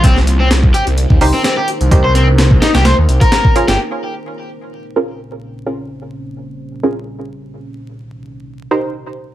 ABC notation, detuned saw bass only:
X:1
M:4/4
L:1/16
Q:"Swing 16ths" 1/4=128
K:Bbdor
V:1 name="Detuned saw bass" clef=bass
C,,6 z C,,2 E,, C,, z4 C,, | C,,6 z C,,2 E,, C,, z4 G,,, | z16 | z16 |
z16 |]